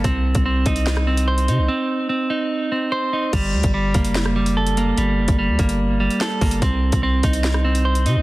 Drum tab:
CC |----------------|----------------|x---------------|----------------|
HH |x--x--xx---x-xx-|----------------|x--x--xx---x-xx-|x--x--xx---xx-ox|
SD |--------or------|----------------|--------or------|------------o---|
BD |o--o--o---------|----------------|o--o--o---------|---o--o-------o-|

CC |----------------|
HH |x--x--xx---x-xx-|
SD |--------or------|
BD |o--o--o---------|